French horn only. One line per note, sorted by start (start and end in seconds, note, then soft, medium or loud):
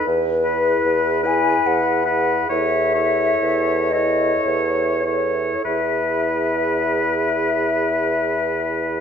0.46 1.23 E4 soft
1.24 2.05 E4 soft
2.07 2.48 E4 soft
2.50 2.93 E4 soft
2.95 3.91 E4 soft
3.94 5.04 E4 soft
5.05 5.64 E4 soft
5.66 9.00 E4 soft